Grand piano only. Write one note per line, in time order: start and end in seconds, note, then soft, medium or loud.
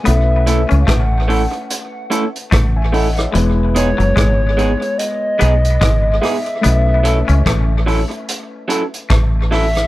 0.03 3.30 A3 medium
0.03 3.31 C#4 medium
0.03 3.32 E4 soft
0.09 0.15 A4 medium
0.16 3.35 B4 medium
2.76 2.93 E5 soft
2.76 2.93 G#5 medium
2.93 3.16 D#5 medium
2.93 3.16 F#5 medium
3.17 3.57 C#5 medium
3.17 3.56 E5 medium
3.31 6.58 G#3 medium
3.31 6.59 B3 medium
3.31 6.60 E4 medium
3.37 6.61 B4 medium
6.61 9.87 A3 medium
6.61 9.87 C#4 medium
6.61 9.87 E4 medium
6.67 9.87 B4 medium